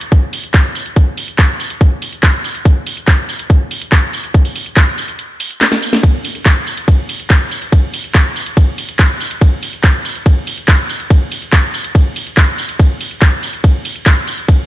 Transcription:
0.01 closed hi-hat
0.12 kick, closed hi-hat
0.33 open hi-hat
0.44 closed hi-hat
0.54 kick, clap, closed hi-hat
0.75 open hi-hat
0.86 closed hi-hat
0.96 kick, closed hi-hat
1.17 open hi-hat
1.28 closed hi-hat
1.39 kick, clap, closed hi-hat
1.60 open hi-hat
1.70 closed hi-hat
1.81 kick, closed hi-hat
2.02 open hi-hat
2.13 closed hi-hat
2.23 kick, clap, closed hi-hat
2.44 open hi-hat
2.55 closed hi-hat
2.65 kick, closed hi-hat
2.87 open hi-hat
2.97 closed hi-hat
3.08 kick, clap, closed hi-hat
3.29 open hi-hat
3.39 closed hi-hat
3.50 kick, closed hi-hat
3.71 open hi-hat
3.82 closed hi-hat
3.92 kick, clap, closed hi-hat
4.13 open hi-hat
4.24 closed hi-hat
4.34 kick, closed hi-hat
4.45 open hi-hat
4.56 open hi-hat
4.66 closed hi-hat
4.77 kick, clap, closed hi-hat
4.98 open hi-hat
5.08 closed hi-hat
5.19 closed hi-hat
5.40 open hi-hat
5.51 closed hi-hat
5.61 snare, clap, closed hi-hat
5.72 snare
5.82 open hi-hat
5.93 snare, closed hi-hat
6.03 kick, closed hi-hat, ride
6.25 open hi-hat
6.35 closed hi-hat
6.46 kick, clap, closed hi-hat, ride
6.67 open hi-hat
6.77 closed hi-hat
6.88 kick, closed hi-hat, ride
7.09 open hi-hat
7.20 closed hi-hat
7.30 kick, clap, closed hi-hat, ride
7.51 open hi-hat
7.62 closed hi-hat
7.72 kick, closed hi-hat, ride
7.94 open hi-hat
8.04 closed hi-hat
8.15 kick, clap, closed hi-hat, ride
8.36 open hi-hat
8.46 closed hi-hat
8.57 kick, closed hi-hat, ride
8.78 open hi-hat
8.89 closed hi-hat
8.99 kick, clap, closed hi-hat, ride
9.20 open hi-hat
9.31 closed hi-hat
9.41 kick, closed hi-hat, ride
9.63 open hi-hat
9.73 closed hi-hat
9.84 kick, clap, closed hi-hat, ride
10.05 open hi-hat
10.15 closed hi-hat
10.26 kick, closed hi-hat, ride
10.47 open hi-hat
10.58 closed hi-hat
10.68 kick, clap, closed hi-hat, ride
10.89 open hi-hat
11.00 closed hi-hat
11.10 kick, closed hi-hat, ride
11.32 open hi-hat
11.42 closed hi-hat
11.53 kick, clap, closed hi-hat, ride
11.74 open hi-hat
11.84 closed hi-hat
11.95 kick, closed hi-hat, ride
12.16 open hi-hat
12.27 closed hi-hat
12.37 kick, clap, closed hi-hat, ride
12.58 open hi-hat
12.69 closed hi-hat
12.79 kick, closed hi-hat, ride
13.01 open hi-hat
13.11 closed hi-hat
13.22 kick, clap, closed hi-hat, ride
13.43 open hi-hat
13.53 closed hi-hat
13.64 kick, closed hi-hat, ride
13.85 open hi-hat
13.96 closed hi-hat
14.06 kick, clap, closed hi-hat, ride
14.27 open hi-hat
14.38 closed hi-hat
14.48 kick, closed hi-hat, ride

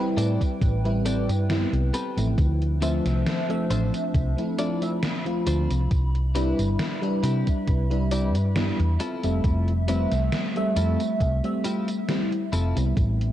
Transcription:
Already playing: G3 C4 B4 G5
0.00 E4
0.17 A2 C4 G4 A4 D5, closed hi-hat, tambourine
0.41 kick, closed hi-hat, tambourine
0.61 A1, kick, closed hi-hat, tambourine
0.84 G3 C4 E4 B4, closed hi-hat
1.05 C4 G4 A4 D5, closed hi-hat, tambourine
1.29 G2, closed hi-hat, tambourine
1.49 G3 B3 C4 E4, snare, closed hi-hat, tambourine
1.73 C2, closed hi-hat
1.94 C4 G4 A4 B4, closed hi-hat, tambourine
2.17 A1 F3 A3 C4 E4, closed hi-hat, tambourine
2.38 D2 D4 C5, kick, closed hi-hat, tambourine
2.62 closed hi-hat
2.81 F3 A3 C4 D4 F4 A4 C5 E5, closed hi-hat, tambourine
3.05 C2, snare, closed hi-hat, tambourine
3.27 snare, closed hi-hat, tambourine
3.49 F3 A3 C4 E5, closed hi-hat
3.70 A1 D4 F4 A4 C5, closed hi-hat, tambourine
3.94 closed hi-hat, tambourine
4.14 C2 B5, kick, closed hi-hat, tambourine
4.37 F3 A3 C4 E4, closed hi-hat
4.58 F3 A3 C4 D4 E4 F4 A4 D5, closed hi-hat, tambourine
4.81 F3 A3 C4 E5, closed hi-hat, tambourine
5.03 snare, closed hi-hat, tambourine
5.25 F3 A3 C4 F4, closed hi-hat
5.47 D2 D4 F4 A4 C5, closed hi-hat, tambourine
5.70 C2, closed hi-hat, tambourine
5.91 C2 E5, kick, closed hi-hat, tambourine
6.15 closed hi-hat
6.35 G3 C4 D4 E4 G4 B4, closed hi-hat, tambourine
6.59 G1, closed hi-hat, tambourine
6.79 snare, closed hi-hat, tambourine
7.02 G3 D4 E4 B4, closed hi-hat
7.23 C3 C4 E4 G4 B4, closed hi-hat, tambourine
7.47 kick, closed hi-hat, tambourine
7.67 C2, kick, closed hi-hat, tambourine
7.90 G3 D4 E4 B4, closed hi-hat
8.11 C4 E4 G4 D5, closed hi-hat, tambourine
8.35 G2, closed hi-hat, tambourine
8.55 G3 B3 D4 E4, snare, closed hi-hat, tambourine
8.79 E2, closed hi-hat
8.99 F3 A3 C4 E4 F4 A4 E5, closed hi-hat, tambourine
9.23 F1 G3 A3 C4 E5, closed hi-hat, tambourine
9.44 F1, kick, closed hi-hat, tambourine
9.68 closed hi-hat
9.88 G3 A3 C4 E4 F4 B4 E5, closed hi-hat, tambourine
10.12 C2, snare, closed hi-hat, tambourine
10.32 snare, closed hi-hat, tambourine
10.56 G3 A3 C4 E5, closed hi-hat
10.76 F2 C4 E4 F4 A4, closed hi-hat, tambourine
11.00 closed hi-hat, tambourine
11.20 C2, kick, closed hi-hat, tambourine
11.44 G3 A3 C4 E5, closed hi-hat
11.64 C4 E4 F4 G4, closed hi-hat, tambourine
11.88 closed hi-hat, tambourine
12.08 G3 A3 C4 E4, snare, closed hi-hat, tambourine
12.32 closed hi-hat
12.52 F1 C4 E4 F4 A4, closed hi-hat, tambourine
12.75 C2 G3 B3 C4 E4, closed hi-hat, tambourine
12.96 A1 B4 G5, kick, closed hi-hat, tambourine
13.21 closed hi-hat

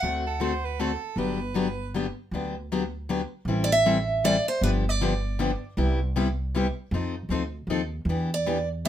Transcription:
Already playing: F#5
0.03 D2 D3 A3 C4 F#4 A4
0.27 A4
0.40 D3 A3 C4 F#4 A4 C5
0.65 B4
0.80 D3 A3 C4 F#4 A4
1.16 G1 D3 F#3 B3 D4 G4 B4
1.54 D3 F#3 B3 D4 G4
1.94 D3 F#3 B3 D4 G4
2.31 D2 D3 F#3 B3 D4 G4
2.72 D3 F#3 B3 D4 G4
3.09 D3 F#3 B3 D4 G4
3.45 A1 E3 G3 C4 E4
3.49 A4
3.64 D5
3.72 E5
3.86 E3 G3 C4 E4 A4
4.24 E3 G3 C4 E4 A4 D5
4.48 C5
4.61 G1 D3 F3 B3 D4 G4 B4
4.89 D5
5.01 D3 F3 B3 D4 G4
5.39 D3 F3 B3 D4 G4
5.77 C2 C3 G3 B3 E4 G4
6.16 C3 G3 B3 E4 G4
6.55 C3 G3 B3 E4 G4
6.91 F2 F3 C4 D#4 A4
7.29 D2 F3 C4 D#4 A4
7.67 D#2 F3 C4 D#4
7.71 A4
8.05 E2
8.09 E3 B3 D4 G4
8.34 D5
8.46 E3 B3 D4 G4
8.85 E3 E5

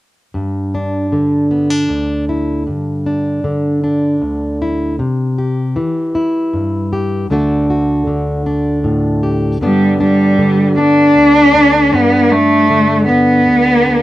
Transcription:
0.34 G2
0.74 D4
1.12 D3
1.51 B3
1.70 D4
1.89 D2
2.29 E4
2.67 G2
3.06 D4
3.44 D3
3.84 D4
4.22 D2
4.62 E4
4.99 C3
5.38 G4
5.76 E3
6.15 E4
6.53 G2
6.93 G4
7.30 D2 D3 A3 D4 F#4
7.70 F#4
8.07 D3
8.46 D4
8.84 A2
9.23 G4
9.61 G2 D3 G3 B3 D4
10.00 G3 D4
10.38 D3
10.78 B3 D4
11.16 D2
11.55 D4
11.92 G2 B3 D4
12.31 A3 D4
12.70 D3
13.08 B3
13.46 D2
13.86 D4

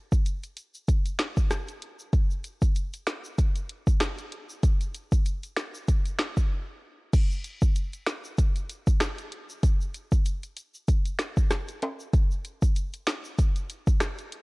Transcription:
0.12 kick, shaker
0.26 closed hi-hat, shaker
0.43 closed hi-hat, shaker
0.57 closed hi-hat, shaker
0.74 shaker
0.88 kick, closed hi-hat, shaker
1.06 closed hi-hat, shaker
1.19 finger snap, snare, closed hi-hat
1.37 kick, shaker
1.51 cross-stick, snare, closed hi-hat, shaker
1.68 closed hi-hat, shaker
1.82 closed hi-hat
1.99 shaker
2.13 kick, closed hi-hat, shaker
2.31 shaker
2.44 closed hi-hat, shaker
2.62 kick, shaker
2.76 closed hi-hat, shaker
2.93 closed hi-hat, shaker
3.07 finger snap, snare, closed hi-hat, shaker
3.24 shaker
3.38 kick, closed hi-hat, shaker
3.56 closed hi-hat, shaker
3.69 closed hi-hat
3.87 kick, shaker
4.00 finger snap, cross-stick, snare, closed hi-hat, shaker
4.18 closed hi-hat, shaker
4.32 closed hi-hat
4.49 shaker
4.63 kick, closed hi-hat, shaker
4.81 closed hi-hat, shaker
4.94 closed hi-hat, shaker
5.12 kick, shaker
5.26 closed hi-hat, shaker
5.43 closed hi-hat, shaker
5.57 finger snap, snare, closed hi-hat, shaker
5.75 shaker
5.88 kick, closed hi-hat, shaker
6.06 closed hi-hat, shaker
6.19 finger snap, snare, closed hi-hat
6.37 kick, shaker
7.13 kick, closed hi-hat, crash, shaker
7.31 shaker
7.44 closed hi-hat, shaker
7.62 kick, shaker
7.76 closed hi-hat, shaker
7.93 closed hi-hat, shaker
8.07 finger snap, snare, closed hi-hat, shaker
8.24 shaker
8.38 kick, closed hi-hat, shaker
8.56 closed hi-hat, shaker
8.69 closed hi-hat, shaker
8.87 kick, shaker
9.00 finger snap, cross-stick, snare, closed hi-hat, shaker
9.18 closed hi-hat, shaker
9.32 closed hi-hat
9.50 shaker
9.63 kick, closed hi-hat, shaker
9.81 shaker
9.94 closed hi-hat, shaker
10.12 kick, shaker
10.26 closed hi-hat, shaker
10.43 closed hi-hat, shaker
10.57 closed hi-hat, shaker
10.74 shaker
10.88 kick, closed hi-hat, shaker
11.06 closed hi-hat, shaker
11.19 finger snap, snare, closed hi-hat, shaker
11.37 kick, shaker
11.51 cross-stick, snare, closed hi-hat, shaker
11.68 closed hi-hat, shaker
11.82 closed hi-hat, high timbale
11.99 shaker
12.13 kick, closed hi-hat, shaker
12.31 shaker
12.44 closed hi-hat, shaker
12.62 kick, shaker
12.75 closed hi-hat, shaker
12.93 closed hi-hat, shaker
13.07 finger snap, snare, closed hi-hat, shaker
13.24 shaker
13.38 kick, closed hi-hat, shaker
13.56 closed hi-hat, shaker
13.69 closed hi-hat, shaker
13.87 kick, shaker
14.00 finger snap, cross-stick, snare, closed hi-hat, shaker
14.18 closed hi-hat, shaker
14.32 closed hi-hat

